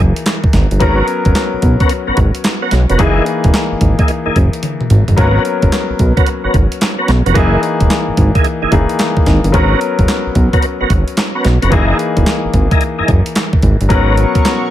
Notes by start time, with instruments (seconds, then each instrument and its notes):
Already playing: grand piano E3 A#3 D#4 G#4
0.00 analog synth bass F#1
0.16 closed hi-hat
0.26 snare, clap, closed hi-hat
0.44 kick
0.53 analog synth bass G#1, kick, snare, closed hi-hat
0.71 analog synth bass G1, closed hi-hat
0.80 analog synth bass G#1, grand piano F#3 B3 C#4 A#4, tonewheel organ B3 C#4 F#4 A#4, kick, closed hi-hat
1.08 closed hi-hat
1.25 analog synth bass F#1, kick, closed hi-hat
1.35 snare, clap, closed hi-hat
1.53 analog synth bass B1
1.62 analog synth bass B1, kick, closed hi-hat
1.80 tonewheel organ B3 C#4 F#4 A#4, kick, closed hi-hat
1.89 closed hi-hat
2.07 analog synth bass G#1, tonewheel organ B3 C#4 F#4 A#4
2.17 analog synth bass G#1, kick, closed hi-hat
2.35 closed hi-hat
2.44 snare, clap, closed hi-hat
2.62 tonewheel organ B3 C#4 F#4 A#4
2.71 analog synth bass B1, snare, closed hi-hat
2.89 analog synth bass F1, tonewheel organ B3 C#4 F#4 A#4, closed hi-hat
2.98 analog synth bass F#1, grand piano E3 A#3 D#4 G#4, tonewheel organ A#3 D#4 E4 G#4, kick, closed hi-hat
3.26 closed hi-hat
3.44 analog synth bass E1, kick, closed hi-hat
3.54 snare, clap, closed hi-hat
3.72 analog synth bass G#1
3.81 analog synth bass G#1, kick, closed hi-hat
3.99 tonewheel organ A#3 D#4 E4 G#4, kick, closed hi-hat
4.08 closed hi-hat
4.26 analog synth bass F#1, tonewheel organ A#3 D#4 E4 G#4
4.36 analog synth bass F#1, kick, closed hi-hat
4.53 closed hi-hat
4.63 closed hi-hat, high tom
4.81 mid tom
4.90 analog synth bass G#1, closed hi-hat, mid tom
5.08 analog synth bass G1, closed hi-hat, floor tom
5.16 analog synth bass G#1, grand piano F#3 A#3 C#4 A#4, tonewheel organ B3 C#4 F#4 A#4, kick, closed hi-hat
5.24 grand piano B3
5.45 closed hi-hat
5.62 analog synth bass F#1, kick, closed hi-hat
5.72 snare, clap, closed hi-hat
5.90 analog synth bass B1
5.99 analog synth bass B1, kick, closed hi-hat
6.17 tonewheel organ B3 C#4 F#4 A#4, kick, closed hi-hat
6.26 closed hi-hat
6.44 analog synth bass G#1, tonewheel organ B3 C#4 F#4 A#4
6.54 analog synth bass G#1, kick, closed hi-hat
6.72 closed hi-hat
6.81 snare, clap, closed hi-hat
6.98 tonewheel organ B3 C#4 F#4 A#4
7.08 analog synth bass B1, snare, closed hi-hat
7.26 analog synth bass F1, tonewheel organ B3 C#4 F#4 A#4, closed hi-hat
7.34 analog synth bass F#1, grand piano E3 A#3 D#4 G#4, tonewheel organ A#3 D#4 E4 G#4, kick, closed hi-hat
7.63 closed hi-hat
7.80 analog synth bass E1, kick, closed hi-hat
7.90 snare, clap, closed hi-hat
8.08 analog synth bass G#1
8.17 analog synth bass G#1, kick, closed hi-hat
8.35 tonewheel organ A#3 D#4 E4 G#4, kick, closed hi-hat
8.44 closed hi-hat
8.62 analog synth bass F#1, tonewheel organ A#3 D#4 E4 G#4
8.71 analog synth bass F#1, grand piano E3 A#3 D#4 G#4, kick, closed hi-hat
8.89 closed hi-hat
8.99 snare, clap, closed hi-hat
9.17 kick
9.26 analog synth bass G#1, kick, snare, closed hi-hat
9.44 analog synth bass G1, closed hi-hat
9.52 analog synth bass G#1, grand piano F#3 B3 C#4 A#4, tonewheel organ B3 C#4 F#4 A#4, kick, closed hi-hat
9.81 closed hi-hat
9.99 analog synth bass F#1, kick, closed hi-hat
10.08 snare, clap, closed hi-hat
10.26 analog synth bass B1
10.35 analog synth bass B1, kick, closed hi-hat
10.53 tonewheel organ B3 C#4 F#4 A#4, kick, closed hi-hat
10.62 closed hi-hat
10.80 analog synth bass G#1, tonewheel organ B3 C#4 F#4 A#4
10.90 analog synth bass G#1, kick, closed hi-hat
11.08 closed hi-hat
11.17 snare, clap, closed hi-hat
11.35 tonewheel organ B3 C#4 F#4 A#4
11.45 analog synth bass B1, snare, closed hi-hat
11.62 analog synth bass F1, tonewheel organ B3 C#4 F#4 A#4, closed hi-hat
11.70 analog synth bass F#1, grand piano E3 A#3 D#4 G#4, tonewheel organ D#4 E4 G#4 A#4, kick, closed hi-hat
11.99 closed hi-hat
12.17 analog synth bass E1, kick, closed hi-hat
12.26 snare, clap, closed hi-hat
12.45 analog synth bass G#1
12.54 analog synth bass G#1, kick, closed hi-hat
12.71 tonewheel organ D#4 E4 G#4 A#4, kick, closed hi-hat
12.81 closed hi-hat
12.98 analog synth bass F#1, tonewheel organ D#4 E4 G#4 A#4
13.08 analog synth bass F#1, kick, closed hi-hat
13.26 closed hi-hat
13.35 snare, clap, closed hi-hat
13.53 kick
13.63 analog synth bass G#1, kick, closed hi-hat
13.81 analog synth bass G1, closed hi-hat
13.89 analog synth bass G#1, grand piano F#3 B3 C#4 A#4, tonewheel organ B3 C#4 F#4 A#4, analog synth pad B3 F#5 A#5 C#6, kick, closed hi-hat
14.17 closed hi-hat
14.35 kick, closed hi-hat
14.45 snare, clap, closed hi-hat